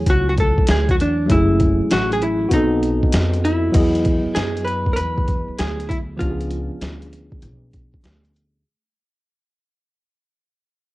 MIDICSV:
0, 0, Header, 1, 6, 480
1, 0, Start_track
1, 0, Key_signature, 4, "major"
1, 0, Tempo, 612245
1, 1018, Time_signature, 4, 2, 24, 8
1, 8580, End_track
2, 0, Start_track
2, 0, Title_t, "Hollow-body jazz guitar"
2, 0, Program_c, 0, 26
2, 78, Note_on_c, 0, 66, 90
2, 220, Note_off_c, 0, 66, 0
2, 229, Note_on_c, 0, 66, 82
2, 263, Note_off_c, 0, 66, 0
2, 314, Note_on_c, 0, 69, 83
2, 546, Note_off_c, 0, 69, 0
2, 555, Note_on_c, 0, 68, 88
2, 709, Note_off_c, 0, 68, 0
2, 712, Note_on_c, 0, 66, 81
2, 745, Note_off_c, 0, 66, 0
2, 794, Note_on_c, 0, 62, 77
2, 1028, Note_off_c, 0, 62, 0
2, 1031, Note_on_c, 0, 64, 85
2, 1506, Note_on_c, 0, 66, 90
2, 1519, Note_off_c, 0, 64, 0
2, 1649, Note_off_c, 0, 66, 0
2, 1668, Note_on_c, 0, 68, 86
2, 1744, Note_on_c, 0, 64, 66
2, 1746, Note_off_c, 0, 68, 0
2, 1964, Note_off_c, 0, 64, 0
2, 1988, Note_on_c, 0, 63, 70
2, 2671, Note_off_c, 0, 63, 0
2, 2702, Note_on_c, 0, 64, 78
2, 3409, Note_on_c, 0, 68, 100
2, 3441, Note_off_c, 0, 64, 0
2, 3643, Note_on_c, 0, 71, 75
2, 3661, Note_off_c, 0, 68, 0
2, 3859, Note_off_c, 0, 71, 0
2, 3867, Note_on_c, 0, 70, 72
2, 3890, Note_on_c, 0, 71, 95
2, 3901, Note_off_c, 0, 70, 0
2, 4382, Note_on_c, 0, 68, 89
2, 4388, Note_off_c, 0, 71, 0
2, 4616, Note_on_c, 0, 64, 70
2, 4627, Note_off_c, 0, 68, 0
2, 4681, Note_off_c, 0, 64, 0
2, 4854, Note_on_c, 0, 65, 68
2, 6264, Note_off_c, 0, 65, 0
2, 8580, End_track
3, 0, Start_track
3, 0, Title_t, "Tine electric piano"
3, 0, Program_c, 1, 4
3, 0, Note_on_c, 1, 54, 63
3, 0, Note_on_c, 1, 57, 59
3, 0, Note_on_c, 1, 64, 54
3, 0, Note_on_c, 1, 73, 61
3, 0, Note_on_c, 1, 80, 71
3, 970, Note_off_c, 1, 54, 0
3, 976, Note_off_c, 1, 57, 0
3, 984, Note_off_c, 1, 73, 0
3, 988, Note_on_c, 1, 54, 61
3, 991, Note_off_c, 1, 64, 0
3, 998, Note_off_c, 1, 80, 0
3, 1001, Note_on_c, 1, 57, 62
3, 1019, Note_on_c, 1, 61, 62
3, 1027, Note_on_c, 1, 64, 59
3, 1045, Note_on_c, 1, 68, 68
3, 1943, Note_off_c, 1, 54, 0
3, 1950, Note_off_c, 1, 57, 0
3, 1951, Note_on_c, 1, 66, 65
3, 1959, Note_off_c, 1, 61, 0
3, 1963, Note_off_c, 1, 64, 0
3, 1964, Note_on_c, 1, 59, 59
3, 1972, Note_off_c, 1, 68, 0
3, 1976, Note_on_c, 1, 60, 59
3, 1990, Note_on_c, 1, 75, 57
3, 2003, Note_on_c, 1, 69, 68
3, 2905, Note_off_c, 1, 66, 0
3, 2911, Note_off_c, 1, 59, 0
3, 2914, Note_on_c, 1, 54, 65
3, 2918, Note_off_c, 1, 60, 0
3, 2924, Note_off_c, 1, 75, 0
3, 2925, Note_on_c, 1, 59, 55
3, 2931, Note_off_c, 1, 69, 0
3, 2940, Note_on_c, 1, 75, 59
3, 2950, Note_on_c, 1, 64, 61
3, 2965, Note_on_c, 1, 68, 63
3, 4814, Note_off_c, 1, 54, 0
3, 4820, Note_off_c, 1, 59, 0
3, 4827, Note_off_c, 1, 75, 0
3, 4832, Note_off_c, 1, 64, 0
3, 4835, Note_on_c, 1, 53, 63
3, 4840, Note_off_c, 1, 68, 0
3, 4851, Note_on_c, 1, 59, 57
3, 4866, Note_on_c, 1, 61, 58
3, 4877, Note_on_c, 1, 62, 59
3, 4892, Note_on_c, 1, 67, 50
3, 4941, Note_off_c, 1, 67, 0
3, 4943, Note_on_c, 1, 68, 64
3, 6735, Note_off_c, 1, 53, 0
3, 6743, Note_off_c, 1, 59, 0
3, 6750, Note_off_c, 1, 61, 0
3, 6756, Note_off_c, 1, 62, 0
3, 6789, Note_off_c, 1, 68, 0
3, 8580, End_track
4, 0, Start_track
4, 0, Title_t, "Upright bass"
4, 0, Program_c, 2, 32
4, 52, Note_on_c, 2, 37, 91
4, 433, Note_off_c, 2, 37, 0
4, 540, Note_on_c, 2, 38, 89
4, 781, Note_off_c, 2, 38, 0
4, 781, Note_on_c, 2, 40, 88
4, 1007, Note_off_c, 2, 40, 0
4, 1021, Note_on_c, 2, 30, 93
4, 1397, Note_off_c, 2, 30, 0
4, 1500, Note_on_c, 2, 33, 76
4, 1955, Note_off_c, 2, 33, 0
4, 1971, Note_on_c, 2, 35, 92
4, 2352, Note_off_c, 2, 35, 0
4, 2459, Note_on_c, 2, 41, 93
4, 2914, Note_off_c, 2, 41, 0
4, 2937, Note_on_c, 2, 40, 93
4, 3315, Note_off_c, 2, 40, 0
4, 3417, Note_on_c, 2, 42, 73
4, 3873, Note_off_c, 2, 42, 0
4, 3896, Note_on_c, 2, 40, 81
4, 4274, Note_off_c, 2, 40, 0
4, 4385, Note_on_c, 2, 38, 86
4, 4837, Note_off_c, 2, 38, 0
4, 4867, Note_on_c, 2, 37, 92
4, 5240, Note_off_c, 2, 37, 0
4, 5340, Note_on_c, 2, 38, 81
4, 5821, Note_on_c, 2, 35, 101
4, 5832, Note_off_c, 2, 38, 0
4, 6197, Note_off_c, 2, 35, 0
4, 6300, Note_on_c, 2, 38, 92
4, 6755, Note_off_c, 2, 38, 0
4, 8580, End_track
5, 0, Start_track
5, 0, Title_t, "Muted upright bass strokes"
5, 453, Note_on_c, 9, 29, 47
5, 531, Note_off_c, 9, 29, 0
5, 1419, Note_on_c, 9, 29, 43
5, 1498, Note_off_c, 9, 29, 0
5, 2374, Note_on_c, 9, 29, 48
5, 2453, Note_off_c, 9, 29, 0
5, 3331, Note_on_c, 9, 29, 41
5, 3409, Note_off_c, 9, 29, 0
5, 4298, Note_on_c, 9, 29, 45
5, 4376, Note_off_c, 9, 29, 0
5, 5260, Note_on_c, 9, 29, 42
5, 5339, Note_off_c, 9, 29, 0
5, 6227, Note_on_c, 9, 29, 43
5, 6305, Note_off_c, 9, 29, 0
5, 8580, End_track
6, 0, Start_track
6, 0, Title_t, "Drums"
6, 50, Note_on_c, 9, 42, 96
6, 51, Note_on_c, 9, 36, 84
6, 128, Note_off_c, 9, 42, 0
6, 129, Note_off_c, 9, 36, 0
6, 295, Note_on_c, 9, 42, 59
6, 299, Note_on_c, 9, 36, 91
6, 373, Note_off_c, 9, 42, 0
6, 378, Note_off_c, 9, 36, 0
6, 455, Note_on_c, 9, 36, 84
6, 526, Note_on_c, 9, 42, 112
6, 533, Note_off_c, 9, 36, 0
6, 538, Note_on_c, 9, 38, 106
6, 604, Note_off_c, 9, 42, 0
6, 616, Note_off_c, 9, 38, 0
6, 696, Note_on_c, 9, 42, 43
6, 698, Note_on_c, 9, 36, 89
6, 775, Note_off_c, 9, 42, 0
6, 776, Note_off_c, 9, 36, 0
6, 785, Note_on_c, 9, 42, 73
6, 863, Note_off_c, 9, 42, 0
6, 1016, Note_on_c, 9, 42, 101
6, 1018, Note_on_c, 9, 36, 110
6, 1095, Note_off_c, 9, 42, 0
6, 1096, Note_off_c, 9, 36, 0
6, 1252, Note_on_c, 9, 42, 63
6, 1259, Note_on_c, 9, 36, 93
6, 1331, Note_off_c, 9, 42, 0
6, 1337, Note_off_c, 9, 36, 0
6, 1494, Note_on_c, 9, 42, 91
6, 1500, Note_on_c, 9, 38, 110
6, 1573, Note_off_c, 9, 42, 0
6, 1579, Note_off_c, 9, 38, 0
6, 1661, Note_on_c, 9, 42, 46
6, 1739, Note_off_c, 9, 42, 0
6, 1739, Note_on_c, 9, 42, 62
6, 1817, Note_off_c, 9, 42, 0
6, 1969, Note_on_c, 9, 42, 100
6, 1970, Note_on_c, 9, 36, 78
6, 2047, Note_off_c, 9, 42, 0
6, 2048, Note_off_c, 9, 36, 0
6, 2217, Note_on_c, 9, 42, 56
6, 2295, Note_off_c, 9, 42, 0
6, 2375, Note_on_c, 9, 36, 78
6, 2449, Note_on_c, 9, 42, 119
6, 2453, Note_off_c, 9, 36, 0
6, 2461, Note_on_c, 9, 38, 105
6, 2527, Note_off_c, 9, 42, 0
6, 2539, Note_off_c, 9, 38, 0
6, 2613, Note_on_c, 9, 42, 38
6, 2692, Note_off_c, 9, 42, 0
6, 2704, Note_on_c, 9, 42, 70
6, 2782, Note_off_c, 9, 42, 0
6, 2932, Note_on_c, 9, 42, 85
6, 2932, Note_on_c, 9, 49, 77
6, 2937, Note_on_c, 9, 36, 106
6, 3010, Note_off_c, 9, 42, 0
6, 3010, Note_off_c, 9, 49, 0
6, 3015, Note_off_c, 9, 36, 0
6, 3097, Note_on_c, 9, 42, 49
6, 3174, Note_off_c, 9, 42, 0
6, 3174, Note_on_c, 9, 42, 63
6, 3181, Note_on_c, 9, 36, 91
6, 3252, Note_off_c, 9, 42, 0
6, 3260, Note_off_c, 9, 36, 0
6, 3418, Note_on_c, 9, 42, 92
6, 3424, Note_on_c, 9, 38, 103
6, 3496, Note_off_c, 9, 42, 0
6, 3502, Note_off_c, 9, 38, 0
6, 3582, Note_on_c, 9, 42, 48
6, 3660, Note_off_c, 9, 42, 0
6, 3666, Note_on_c, 9, 42, 61
6, 3744, Note_off_c, 9, 42, 0
6, 3814, Note_on_c, 9, 36, 84
6, 3893, Note_off_c, 9, 36, 0
6, 3894, Note_on_c, 9, 42, 95
6, 3973, Note_off_c, 9, 42, 0
6, 4060, Note_on_c, 9, 36, 91
6, 4138, Note_off_c, 9, 36, 0
6, 4139, Note_on_c, 9, 42, 55
6, 4144, Note_on_c, 9, 36, 79
6, 4217, Note_off_c, 9, 42, 0
6, 4222, Note_off_c, 9, 36, 0
6, 4379, Note_on_c, 9, 42, 103
6, 4391, Note_on_c, 9, 38, 93
6, 4457, Note_off_c, 9, 42, 0
6, 4470, Note_off_c, 9, 38, 0
6, 4546, Note_on_c, 9, 42, 37
6, 4624, Note_off_c, 9, 42, 0
6, 4626, Note_on_c, 9, 36, 81
6, 4633, Note_on_c, 9, 42, 70
6, 4705, Note_off_c, 9, 36, 0
6, 4711, Note_off_c, 9, 42, 0
6, 4865, Note_on_c, 9, 42, 78
6, 4866, Note_on_c, 9, 36, 89
6, 4943, Note_off_c, 9, 42, 0
6, 4944, Note_off_c, 9, 36, 0
6, 5023, Note_on_c, 9, 42, 42
6, 5101, Note_off_c, 9, 42, 0
6, 5101, Note_on_c, 9, 42, 62
6, 5179, Note_off_c, 9, 42, 0
6, 5343, Note_on_c, 9, 42, 84
6, 5349, Note_on_c, 9, 38, 112
6, 5421, Note_off_c, 9, 42, 0
6, 5427, Note_off_c, 9, 38, 0
6, 5504, Note_on_c, 9, 42, 45
6, 5583, Note_off_c, 9, 42, 0
6, 5589, Note_on_c, 9, 42, 60
6, 5667, Note_off_c, 9, 42, 0
6, 5739, Note_on_c, 9, 36, 89
6, 5817, Note_off_c, 9, 36, 0
6, 5818, Note_on_c, 9, 42, 81
6, 5896, Note_off_c, 9, 42, 0
6, 6063, Note_on_c, 9, 42, 56
6, 6068, Note_on_c, 9, 36, 77
6, 6142, Note_off_c, 9, 42, 0
6, 6146, Note_off_c, 9, 36, 0
6, 6224, Note_on_c, 9, 36, 76
6, 6302, Note_off_c, 9, 36, 0
6, 6303, Note_on_c, 9, 42, 96
6, 6315, Note_on_c, 9, 38, 92
6, 6381, Note_off_c, 9, 42, 0
6, 6394, Note_off_c, 9, 38, 0
6, 6467, Note_on_c, 9, 42, 37
6, 6545, Note_off_c, 9, 42, 0
6, 6556, Note_on_c, 9, 42, 67
6, 6635, Note_off_c, 9, 42, 0
6, 8580, End_track
0, 0, End_of_file